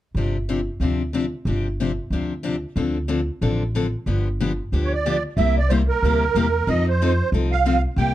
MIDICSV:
0, 0, Header, 1, 4, 480
1, 0, Start_track
1, 0, Tempo, 325910
1, 221, Time_signature, 4, 2, 24, 8
1, 11993, End_track
2, 0, Start_track
2, 0, Title_t, "Accordion"
2, 0, Program_c, 0, 21
2, 7137, Note_on_c, 0, 73, 49
2, 7251, Note_off_c, 0, 73, 0
2, 7271, Note_on_c, 0, 74, 65
2, 7702, Note_off_c, 0, 74, 0
2, 7916, Note_on_c, 0, 76, 69
2, 8182, Note_off_c, 0, 76, 0
2, 8224, Note_on_c, 0, 74, 70
2, 8387, Note_on_c, 0, 72, 67
2, 8406, Note_off_c, 0, 74, 0
2, 8518, Note_off_c, 0, 72, 0
2, 8669, Note_on_c, 0, 70, 77
2, 9848, Note_on_c, 0, 75, 75
2, 9855, Note_off_c, 0, 70, 0
2, 10106, Note_off_c, 0, 75, 0
2, 10146, Note_on_c, 0, 72, 74
2, 10752, Note_off_c, 0, 72, 0
2, 11074, Note_on_c, 0, 77, 80
2, 11517, Note_off_c, 0, 77, 0
2, 11754, Note_on_c, 0, 79, 75
2, 11993, Note_off_c, 0, 79, 0
2, 11993, End_track
3, 0, Start_track
3, 0, Title_t, "Steel-string acoustic guitar"
3, 0, Program_c, 1, 25
3, 248, Note_on_c, 1, 48, 46
3, 248, Note_on_c, 1, 53, 45
3, 251, Note_on_c, 1, 60, 48
3, 254, Note_on_c, 1, 62, 47
3, 260, Note_on_c, 1, 67, 53
3, 533, Note_off_c, 1, 53, 0
3, 534, Note_off_c, 1, 48, 0
3, 535, Note_off_c, 1, 60, 0
3, 536, Note_off_c, 1, 62, 0
3, 539, Note_off_c, 1, 67, 0
3, 719, Note_on_c, 1, 48, 70
3, 722, Note_on_c, 1, 53, 61
3, 728, Note_on_c, 1, 60, 63
3, 731, Note_on_c, 1, 62, 67
3, 736, Note_on_c, 1, 67, 67
3, 871, Note_off_c, 1, 48, 0
3, 873, Note_off_c, 1, 53, 0
3, 876, Note_off_c, 1, 60, 0
3, 877, Note_off_c, 1, 62, 0
3, 880, Note_off_c, 1, 67, 0
3, 1190, Note_on_c, 1, 48, 53
3, 1197, Note_on_c, 1, 53, 52
3, 1207, Note_on_c, 1, 67, 52
3, 1213, Note_on_c, 1, 60, 54
3, 1216, Note_on_c, 1, 62, 50
3, 1486, Note_off_c, 1, 48, 0
3, 1489, Note_off_c, 1, 53, 0
3, 1495, Note_off_c, 1, 67, 0
3, 1497, Note_off_c, 1, 60, 0
3, 1499, Note_off_c, 1, 62, 0
3, 1668, Note_on_c, 1, 48, 67
3, 1681, Note_on_c, 1, 62, 69
3, 1685, Note_on_c, 1, 53, 64
3, 1685, Note_on_c, 1, 67, 68
3, 1690, Note_on_c, 1, 60, 70
3, 1827, Note_off_c, 1, 48, 0
3, 1834, Note_off_c, 1, 62, 0
3, 1835, Note_off_c, 1, 67, 0
3, 1836, Note_off_c, 1, 53, 0
3, 1838, Note_off_c, 1, 60, 0
3, 2161, Note_on_c, 1, 60, 54
3, 2163, Note_on_c, 1, 53, 52
3, 2170, Note_on_c, 1, 48, 45
3, 2173, Note_on_c, 1, 67, 49
3, 2179, Note_on_c, 1, 62, 56
3, 2453, Note_off_c, 1, 53, 0
3, 2453, Note_off_c, 1, 60, 0
3, 2457, Note_off_c, 1, 48, 0
3, 2459, Note_off_c, 1, 67, 0
3, 2461, Note_off_c, 1, 62, 0
3, 2651, Note_on_c, 1, 48, 67
3, 2657, Note_on_c, 1, 53, 70
3, 2663, Note_on_c, 1, 60, 68
3, 2670, Note_on_c, 1, 62, 73
3, 2677, Note_on_c, 1, 67, 71
3, 2800, Note_off_c, 1, 48, 0
3, 2803, Note_off_c, 1, 53, 0
3, 2806, Note_off_c, 1, 60, 0
3, 2809, Note_off_c, 1, 62, 0
3, 2813, Note_off_c, 1, 67, 0
3, 3127, Note_on_c, 1, 48, 49
3, 3132, Note_on_c, 1, 60, 50
3, 3136, Note_on_c, 1, 53, 51
3, 3136, Note_on_c, 1, 62, 54
3, 3146, Note_on_c, 1, 67, 51
3, 3416, Note_off_c, 1, 48, 0
3, 3419, Note_off_c, 1, 60, 0
3, 3421, Note_off_c, 1, 53, 0
3, 3421, Note_off_c, 1, 62, 0
3, 3426, Note_off_c, 1, 67, 0
3, 3582, Note_on_c, 1, 48, 71
3, 3589, Note_on_c, 1, 53, 66
3, 3591, Note_on_c, 1, 60, 68
3, 3602, Note_on_c, 1, 62, 75
3, 3613, Note_on_c, 1, 67, 74
3, 3746, Note_off_c, 1, 48, 0
3, 3749, Note_off_c, 1, 53, 0
3, 3750, Note_off_c, 1, 60, 0
3, 3756, Note_off_c, 1, 62, 0
3, 3761, Note_off_c, 1, 67, 0
3, 4071, Note_on_c, 1, 50, 50
3, 4074, Note_on_c, 1, 53, 50
3, 4076, Note_on_c, 1, 60, 52
3, 4076, Note_on_c, 1, 62, 56
3, 4076, Note_on_c, 1, 69, 57
3, 4369, Note_off_c, 1, 50, 0
3, 4370, Note_off_c, 1, 53, 0
3, 4371, Note_off_c, 1, 60, 0
3, 4371, Note_off_c, 1, 62, 0
3, 4372, Note_off_c, 1, 69, 0
3, 4538, Note_on_c, 1, 50, 69
3, 4545, Note_on_c, 1, 60, 67
3, 4546, Note_on_c, 1, 53, 72
3, 4553, Note_on_c, 1, 69, 70
3, 4554, Note_on_c, 1, 62, 78
3, 4704, Note_off_c, 1, 50, 0
3, 4708, Note_off_c, 1, 53, 0
3, 4708, Note_off_c, 1, 60, 0
3, 4712, Note_off_c, 1, 62, 0
3, 4712, Note_off_c, 1, 69, 0
3, 5034, Note_on_c, 1, 50, 54
3, 5036, Note_on_c, 1, 53, 57
3, 5042, Note_on_c, 1, 60, 52
3, 5045, Note_on_c, 1, 62, 58
3, 5046, Note_on_c, 1, 69, 57
3, 5331, Note_off_c, 1, 50, 0
3, 5331, Note_off_c, 1, 53, 0
3, 5334, Note_off_c, 1, 60, 0
3, 5336, Note_off_c, 1, 62, 0
3, 5337, Note_off_c, 1, 69, 0
3, 5522, Note_on_c, 1, 53, 64
3, 5526, Note_on_c, 1, 50, 67
3, 5534, Note_on_c, 1, 62, 70
3, 5535, Note_on_c, 1, 60, 70
3, 5537, Note_on_c, 1, 69, 82
3, 5676, Note_off_c, 1, 53, 0
3, 5678, Note_off_c, 1, 50, 0
3, 5682, Note_off_c, 1, 62, 0
3, 5683, Note_off_c, 1, 60, 0
3, 5684, Note_off_c, 1, 69, 0
3, 5991, Note_on_c, 1, 50, 49
3, 5994, Note_on_c, 1, 53, 50
3, 5999, Note_on_c, 1, 62, 50
3, 6003, Note_on_c, 1, 59, 50
3, 6007, Note_on_c, 1, 67, 51
3, 6289, Note_off_c, 1, 50, 0
3, 6291, Note_off_c, 1, 53, 0
3, 6293, Note_off_c, 1, 62, 0
3, 6295, Note_off_c, 1, 59, 0
3, 6297, Note_off_c, 1, 67, 0
3, 6487, Note_on_c, 1, 50, 68
3, 6488, Note_on_c, 1, 53, 67
3, 6492, Note_on_c, 1, 62, 65
3, 6498, Note_on_c, 1, 67, 77
3, 6499, Note_on_c, 1, 59, 73
3, 6639, Note_off_c, 1, 50, 0
3, 6639, Note_off_c, 1, 53, 0
3, 6641, Note_off_c, 1, 62, 0
3, 6644, Note_off_c, 1, 67, 0
3, 6645, Note_off_c, 1, 59, 0
3, 6963, Note_on_c, 1, 50, 49
3, 6969, Note_on_c, 1, 59, 52
3, 6972, Note_on_c, 1, 53, 53
3, 6974, Note_on_c, 1, 62, 55
3, 6976, Note_on_c, 1, 67, 59
3, 7255, Note_off_c, 1, 50, 0
3, 7258, Note_off_c, 1, 59, 0
3, 7259, Note_off_c, 1, 53, 0
3, 7260, Note_off_c, 1, 62, 0
3, 7261, Note_off_c, 1, 67, 0
3, 7447, Note_on_c, 1, 50, 67
3, 7453, Note_on_c, 1, 53, 65
3, 7456, Note_on_c, 1, 67, 72
3, 7459, Note_on_c, 1, 59, 64
3, 7460, Note_on_c, 1, 62, 69
3, 7598, Note_off_c, 1, 50, 0
3, 7602, Note_off_c, 1, 53, 0
3, 7603, Note_off_c, 1, 67, 0
3, 7605, Note_off_c, 1, 59, 0
3, 7605, Note_off_c, 1, 62, 0
3, 7919, Note_on_c, 1, 48, 47
3, 7919, Note_on_c, 1, 55, 54
3, 7925, Note_on_c, 1, 58, 59
3, 7929, Note_on_c, 1, 64, 55
3, 7930, Note_on_c, 1, 67, 58
3, 8212, Note_off_c, 1, 48, 0
3, 8212, Note_off_c, 1, 55, 0
3, 8215, Note_off_c, 1, 58, 0
3, 8217, Note_off_c, 1, 64, 0
3, 8217, Note_off_c, 1, 67, 0
3, 8396, Note_on_c, 1, 48, 76
3, 8403, Note_on_c, 1, 55, 72
3, 8409, Note_on_c, 1, 64, 75
3, 8411, Note_on_c, 1, 58, 70
3, 8414, Note_on_c, 1, 67, 76
3, 8552, Note_off_c, 1, 48, 0
3, 8555, Note_off_c, 1, 55, 0
3, 8559, Note_off_c, 1, 58, 0
3, 8559, Note_off_c, 1, 64, 0
3, 8561, Note_off_c, 1, 67, 0
3, 8898, Note_on_c, 1, 48, 57
3, 8903, Note_on_c, 1, 55, 56
3, 8914, Note_on_c, 1, 64, 65
3, 8914, Note_on_c, 1, 67, 63
3, 8916, Note_on_c, 1, 58, 59
3, 9180, Note_off_c, 1, 48, 0
3, 9183, Note_off_c, 1, 55, 0
3, 9188, Note_off_c, 1, 64, 0
3, 9188, Note_off_c, 1, 67, 0
3, 9189, Note_off_c, 1, 58, 0
3, 9358, Note_on_c, 1, 48, 70
3, 9365, Note_on_c, 1, 58, 80
3, 9371, Note_on_c, 1, 55, 78
3, 9381, Note_on_c, 1, 64, 73
3, 9384, Note_on_c, 1, 67, 78
3, 9512, Note_off_c, 1, 48, 0
3, 9515, Note_off_c, 1, 58, 0
3, 9518, Note_off_c, 1, 55, 0
3, 9523, Note_off_c, 1, 64, 0
3, 9525, Note_off_c, 1, 67, 0
3, 9828, Note_on_c, 1, 53, 58
3, 9841, Note_on_c, 1, 60, 58
3, 9844, Note_on_c, 1, 63, 57
3, 9848, Note_on_c, 1, 69, 64
3, 10124, Note_off_c, 1, 53, 0
3, 10130, Note_off_c, 1, 60, 0
3, 10132, Note_off_c, 1, 63, 0
3, 10134, Note_off_c, 1, 69, 0
3, 10334, Note_on_c, 1, 53, 73
3, 10341, Note_on_c, 1, 60, 79
3, 10346, Note_on_c, 1, 63, 81
3, 10351, Note_on_c, 1, 69, 85
3, 10478, Note_off_c, 1, 53, 0
3, 10482, Note_off_c, 1, 60, 0
3, 10484, Note_off_c, 1, 63, 0
3, 10487, Note_off_c, 1, 69, 0
3, 10808, Note_on_c, 1, 53, 57
3, 10817, Note_on_c, 1, 60, 60
3, 10817, Note_on_c, 1, 69, 62
3, 10824, Note_on_c, 1, 63, 57
3, 11093, Note_off_c, 1, 53, 0
3, 11097, Note_off_c, 1, 60, 0
3, 11097, Note_off_c, 1, 69, 0
3, 11100, Note_off_c, 1, 63, 0
3, 11276, Note_on_c, 1, 53, 76
3, 11283, Note_on_c, 1, 60, 81
3, 11285, Note_on_c, 1, 69, 79
3, 11290, Note_on_c, 1, 63, 79
3, 11428, Note_off_c, 1, 53, 0
3, 11431, Note_off_c, 1, 60, 0
3, 11433, Note_off_c, 1, 69, 0
3, 11435, Note_off_c, 1, 63, 0
3, 11749, Note_on_c, 1, 48, 55
3, 11753, Note_on_c, 1, 55, 57
3, 11767, Note_on_c, 1, 64, 55
3, 11772, Note_on_c, 1, 58, 57
3, 11774, Note_on_c, 1, 67, 61
3, 11993, Note_off_c, 1, 48, 0
3, 11993, Note_off_c, 1, 55, 0
3, 11993, Note_off_c, 1, 58, 0
3, 11993, Note_off_c, 1, 64, 0
3, 11993, Note_off_c, 1, 67, 0
3, 11993, End_track
4, 0, Start_track
4, 0, Title_t, "Upright bass"
4, 0, Program_c, 2, 32
4, 214, Note_on_c, 2, 31, 64
4, 987, Note_off_c, 2, 31, 0
4, 1174, Note_on_c, 2, 38, 57
4, 1948, Note_off_c, 2, 38, 0
4, 2138, Note_on_c, 2, 31, 70
4, 2911, Note_off_c, 2, 31, 0
4, 3099, Note_on_c, 2, 38, 61
4, 3872, Note_off_c, 2, 38, 0
4, 4060, Note_on_c, 2, 38, 73
4, 4832, Note_off_c, 2, 38, 0
4, 5029, Note_on_c, 2, 33, 63
4, 5798, Note_off_c, 2, 33, 0
4, 5981, Note_on_c, 2, 31, 68
4, 6752, Note_off_c, 2, 31, 0
4, 6954, Note_on_c, 2, 38, 60
4, 7720, Note_off_c, 2, 38, 0
4, 7904, Note_on_c, 2, 36, 75
4, 8672, Note_off_c, 2, 36, 0
4, 8871, Note_on_c, 2, 38, 71
4, 9277, Note_off_c, 2, 38, 0
4, 9346, Note_on_c, 2, 40, 66
4, 9753, Note_off_c, 2, 40, 0
4, 9826, Note_on_c, 2, 41, 76
4, 10591, Note_off_c, 2, 41, 0
4, 10782, Note_on_c, 2, 36, 72
4, 11548, Note_off_c, 2, 36, 0
4, 11729, Note_on_c, 2, 36, 77
4, 11993, Note_off_c, 2, 36, 0
4, 11993, End_track
0, 0, End_of_file